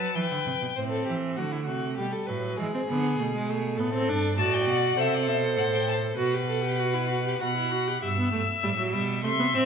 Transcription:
Already playing: cello F#3, violin B4 A5
0.15 cello E3, violin B4 G5
0.31 cello D3
0.46 cello C3
0.62 cello B2
0.76 cello A2, viola C4, violin C5
0.90 violin A4
1.05 cello E3, violin G4
1.35 cello D3, viola A3, violin F#4
1.51 violin E4
1.65 cello C3, violin F#4
1.98 cello B2, viola G3, violin G4
2.12 violin A4
2.26 cello A2, viola F#3, violin B4
2.57 cello E3, viola G#3, violin G#4
2.74 viola C4
2.89 cello D3, viola B3
3.18 cello B2, viola A3
3.35 viola G#3
3.50 viola A3
3.77 cello A2, viola B3, violin A4
3.94 viola C4
4.08 cello G2, viola D4
4.37 cello A2, viola F#4, violin D5 A5
4.54 violin G5
4.66 cello B2, violin F#5
4.97 cello C3, viola A4, violin C5 E5
5.14 violin D5
5.27 cello B2, violin E5
5.57 cello A2, violin F#5
5.73 violin G5
5.88 violin A5
6.17 cello B2, viola F#4, violin B4 F#5
6.34 viola G4
6.49 viola A4
6.64 viola G4
6.79 viola F#4
6.94 viola E4
7.09 viola F#4
7.25 viola G4
7.40 cello B2, viola F#4, violin F#5 B5
7.56 viola E4
7.71 viola F#4
7.88 viola G4
8.02 cello G2, viola G4, violin E5 E6
8.18 viola B3
8.32 cello G2, viola A3
8.64 cello A2, viola G3
8.78 viola F#3
8.93 cello B2, viola G3
9.23 cello C3, viola A3, violin E5 C6
9.39 viola B3
9.54 cello A2, viola C4, violin E6

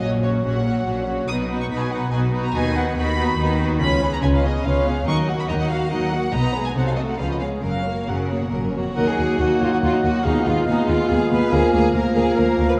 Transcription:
0.00 double bass section A#1, cello section A#2, viola section F#3 C#4, violin section F#4 C#5 D#5
0.21 viola section F#3 C#4, violin section F#4 C#5
0.44 double bass section A#1, cello section A#2, viola section F#3 C#4, violin section F#4 C#5 F#5
0.65 viola section F#3 C#4, violin section F#4 C#5
0.86 double bass section A#1, cello section A#2, viola section F#3 C#4, violin section F#4 C#5
1.06 viola section F#3 C#4, violin section F#4 C#5
1.27 double bass section B1, cello section B2, viola section B3 D#4, violin section F#4 B4 D#6
1.49 viola section B3 D#4, violin section F#4 B4
1.61 violin section C#6
1.70 double bass section B1, cello section B2, viola section B3 D#4, violin section F#4 B4 B5
1.81 violin section G#5
1.90 viola section B3 D#4, violin section F#4 B4 F#5
2.11 double bass section B1, cello section B2, viola section B3 D#4, violin section F#4 B4 G#5
2.31 viola section B3 D#4, violin section F#4 B4
2.44 violin section A#5
2.53 double bass section D#2, cello section D#3, viola section B3 D#4, violin section F#4 B4 G#5
2.75 viola section B3 D#4, violin section F#4 B4 F#5
2.96 double bass section D#2, cello section D#3, viola section B3 D#4, violin section F#4 B4 B5
3.18 viola section B3 D#4, violin section F#4 B4
3.39 double bass section D#2, cello section D#3, viola section B3 D#4, violin section F#4 B4
3.59 viola section B3 D#4, violin section F#4 B4
3.81 double bass section C#2, cello section C#3, viola section C#4 F4, violin section B4 C#5 B5
4.01 viola section B3 C#4, violin section G#4 C#5
4.13 violin section A#5
4.22 double bass section C#2, cello section C#3, viola section C#4 F4, violin section B4 C#5 G#5
4.35 violin section F5
4.44 viola section B3 C#4, violin section G#4 C#5 D#5
4.64 double bass section C#2, cello section C#3, viola section C#4 F4, violin section B4 C#5 F5
4.86 viola section B3 C#4, violin section G#4 C#5
5.06 double bass section D#2, cello section D#3, viola section F#3 D#4, violin section A#4 D#5 C#6
5.27 viola section A#3 F#4, violin section F#4 F#5
5.40 violin section B5
5.48 double bass section D#2, cello section D#3, viola section F#3 D#4, violin section A#4 D#5 A#5
5.60 violin section F#5
5.69 viola section A#3 F#4, violin section F#4 F5 F#5
5.91 double bass section D#2, cello section D#3, viola section F#3 D#4, violin section A#4 D#5 F#5
6.11 viola section A#3 F#4, violin section F#4 F#5
6.33 double bass section B1, cello section B2, viola section B3 D#4, violin section B4 D#5 A#5
6.54 viola section G#3 B3, violin section G#4 B4
6.66 violin section G#5
6.75 double bass section C2, cello section C3, viola section F#3 D#4, violin section A4 C5 F#5
6.87 violin section F5
6.97 viola section A3 C4, violin section F#4 A4 D#5
7.09 violin section F#5
7.19 double bass section C#2, cello section C#3, viola section F3 C#4, violin section F4 B4 F5
7.31 violin section D#5
7.41 viola section G#3 B3, violin section G#4 C#5 F5
7.62 double bass section F#1, cello section F#2, viola section F#3 C#4, violin section A#4 F5
7.84 viola section A#3, violin section F#4 C#5
8.07 double bass section F#1, cello section C#3, viola section F#3 C#4, violin section A#4 F#5
8.28 viola section A#3, violin section F#4 C#5
8.41 cello section B2
8.50 double bass section F#1, cello section A#2, viola section F#3 C#4, violin section A#4
8.64 cello section F#2
8.73 cello section F2, viola section A#3, violin section F#4 C#5
8.95 cello section D#2, double bass section D#2, bassoon F#3, french horn section A#3 D#4, viola section A#3 F#4, clarinet A#3, violin section A#4 D#5, oboe F#5
9.07 violin section G#4
9.18 cello section D#2, double bass section D#2, viola section A#3 F#4, violin section D#5
9.39 cello section D#2, double bass section D#2, bassoon F#3, viola section A#3 F#4, clarinet A#3, violin section F#4 D#5, oboe F#5
9.60 cello section D#2, double bass section D#2, viola section A#3 F#4, violin section F4 D#5
9.73 violin section F#4
9.82 cello section D#2, double bass section D#2, viola section A#3 F#4, violin section F4 D#5
9.94 violin section D#4
10.03 cello section D#2, double bass section D#2, viola section A#3 F#4, violin section F#4 D#5
10.23 cello section D#2, double bass section D#2, bassoon G#3, viola section B3 G#4, clarinet B3, french horn section B3 F4, violin section D#4 F5, oboe F5
10.45 cello section D#2, double bass section D#2, viola section B3 G#4, violin section F4 F5
10.64 cello section D#2, double bass section D#2, bassoon G#3, viola section B3 G#4, clarinet B3, oboe F5, violin section F5
10.68 violin section D#4
10.88 cello section D#2, double bass section D#2, viola section B3 G#4, violin section F4 F5
11.08 double bass section D#2, cello section D#2, bassoon G#3, clarinet B3, viola section B3 G#4, violin section G#4 F5, oboe F5
11.30 cello section D#2, double bass section D#2, viola section B3 G#4, violin section B4 F5
11.52 cello section D2, double bass section D2, bassoon F3, clarinet A#3, viola section A#3 A#4, french horn section A#3, violin section G#4 F5, oboe F5
11.74 cello section D2, double bass section D2, viola section A#3 A#4, violin section G#4 F5
11.93 cello section D2, double bass section D2, bassoon F3, clarinet A#3, viola section A#3 A#4, violin section A#4 F5, oboe F5
12.15 cello section D2, double bass section D2, viola section A#3 A#4, violin section G#4 F5
12.35 cello section D2, double bass section D2, bassoon F3, viola section A#3 A#4, clarinet A#3, violin section A#4 F5, oboe F5
12.57 cello section D2, double bass section D2, viola section A#3 A#4, violin section F5
12.69 violin section B4

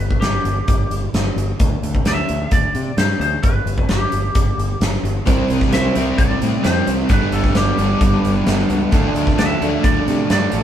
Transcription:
Already playing: lead electric guitar B4
0.00 fingered electric bass G1
0.11 kick
0.21 fingered electric bass G1, lead electric guitar G4, snare, closed hi-hat
0.45 fingered electric bass G1, closed hi-hat
0.68 fingered electric bass G1, kick, closed hi-hat
0.90 fingered electric bass G1, closed hi-hat
1.13 fingered electric bass G1, snare, closed hi-hat
1.36 fingered electric bass G1, closed hi-hat
1.60 fingered electric bass D2, kick, closed hi-hat
1.83 fingered electric bass D2, closed hi-hat
1.95 kick
2.05 fingered electric bass D2, lead electric guitar E5, snare, closed hi-hat
2.29 fingered electric bass D2, closed hi-hat
2.51 fingered electric bass D2, lead electric guitar D5, kick, closed hi-hat
2.75 fingered electric bass C3, closed hi-hat
2.97 fingered electric bass G2, lead electric guitar C5, snare, closed hi-hat
3.11 snare
3.20 fingered electric bass D2, lead electric guitar C5, closed hi-hat
3.43 fingered electric bass G1, lead electric guitar B4, kick, closed hi-hat
3.66 fingered electric bass G1, closed hi-hat
3.78 kick
3.89 fingered electric bass G1, lead electric guitar G4, snare, closed hi-hat
4.12 fingered electric bass G1, closed hi-hat
4.35 fingered electric bass G1, kick, closed hi-hat
4.58 fingered electric bass G1, closed hi-hat
4.80 fingered electric bass G1, snare, closed hi-hat
4.94 snare
5.03 fingered electric bass G1, closed hi-hat
5.25 fingered electric bass C2, steel-string acoustic guitar C3 E3 G3 C4 E4 C5, kick, closed hi-hat
5.48 fingered electric bass C2, steel-string acoustic guitar G3 C4 E4 C5, closed hi-hat
5.61 kick, snare
5.73 fingered electric bass C2, steel-string acoustic guitar C3 E3 G3 C4 E4 C5, lead electric guitar E5, snare, closed hi-hat
5.95 fingered electric bass C2, distorted electric guitar C3, steel-string acoustic guitar G3 C4 E4 C5, closed hi-hat
6.18 fingered electric bass C2, lead electric guitar D5, kick, closed hi-hat
6.30 steel-string acoustic guitar G3 C4 E4 C5
6.41 fingered electric bass A2, steel-string acoustic guitar G3 C4 E4 C5, closed hi-hat
6.54 steel-string acoustic guitar G3 C4 E4 C5
6.63 fingered electric bass F2, steel-string acoustic guitar C3 E3 G3 C4 E4 C5, lead electric guitar C5, snare, closed hi-hat
6.86 fingered electric bass C2, steel-string acoustic guitar G3 C4 E4 C5, closed hi-hat
7.00 steel-string acoustic guitar G3 C4 E4 C5
7.09 fingered electric bass G1, distorted electric guitar G2 D3, steel-string acoustic guitar G3 B3 D4 B4, lead electric guitar B4, kick, closed hi-hat
7.32 fingered electric bass G1, steel-string acoustic guitar G3 B3 D4 B4, lead electric guitar A4, closed hi-hat
7.44 kick, snare
7.55 fingered electric bass G1, steel-string acoustic guitar G3 B3 D4 B4, lead electric guitar G4, snare, closed hi-hat
7.77 fingered electric bass G1, distorted electric guitar G2 D3, steel-string acoustic guitar G3 B3 D4 B4, closed hi-hat
8.01 fingered electric bass G1, kick, closed hi-hat
8.14 steel-string acoustic guitar B3 D4 B4
8.24 fingered electric bass G1, steel-string acoustic guitar G3 B3 D4 B4, closed hi-hat
8.35 steel-string acoustic guitar B3 D4 B4
8.46 fingered electric bass G1, distorted electric guitar G2 D3, steel-string acoustic guitar G3 B3 D4 B4, snare, closed hi-hat
8.59 snare
8.69 fingered electric bass C#2, steel-string acoustic guitar G3 B3 D4 B4, closed hi-hat
8.80 steel-string acoustic guitar B3 D4 B4
8.91 fingered electric bass D2, steel-string acoustic guitar D3 D4 F4 A4, overdriven electric guitar F3, distorted electric guitar A3, kick, closed hi-hat
9.13 fingered electric bass D2, steel-string acoustic guitar D3 D4 F4 A4, closed hi-hat
9.27 kick, snare
9.38 fingered electric bass D2, steel-string acoustic guitar D3 D4 F4 A4, lead electric guitar E5, snare, closed hi-hat
9.62 fingered electric bass D2, steel-string acoustic guitar D3 D4 F4 A4, overdriven electric guitar F3, distorted electric guitar A3, closed hi-hat
9.84 fingered electric bass D2, lead electric guitar D5, kick, closed hi-hat
9.94 steel-string acoustic guitar D4 F4 A4
10.07 fingered electric bass C3, steel-string acoustic guitar D3 D4 F4 A4, closed hi-hat
10.17 steel-string acoustic guitar D4 F4 A4
10.29 fingered electric bass G2, steel-string acoustic guitar D3 D4 F4 A4, distorted electric guitar A3, lead electric guitar D5, snare, closed hi-hat
10.52 fingered electric bass A1, steel-string acoustic guitar D3 D4 F4 A4, closed hi-hat

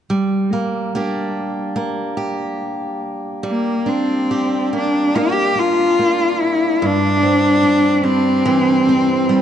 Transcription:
0.10 steel-string acoustic guitar G3
0.53 steel-string acoustic guitar A#3
0.95 steel-string acoustic guitar A#3 D4 G4
1.76 steel-string acoustic guitar A#3
2.17 steel-string acoustic guitar G4
3.43 steel-string acoustic guitar G3
3.48 cello A#3
3.86 cello C4, steel-string acoustic guitar D4
4.31 steel-string acoustic guitar G4
4.73 steel-string acoustic guitar A#3
4.78 cello D4
5.16 steel-string acoustic guitar A#3, cello G4
5.56 steel-string acoustic guitar D4, cello F4
5.99 steel-string acoustic guitar A#3
6.42 cello E4
6.75 cello E4
6.82 steel-string acoustic guitar G2, cello D4
7.23 steel-string acoustic guitar C4
7.63 steel-string acoustic guitar D4
8.04 steel-string acoustic guitar G3, cello C4
8.45 steel-string acoustic guitar E3
8.89 steel-string acoustic guitar C4
9.29 steel-string acoustic guitar G3

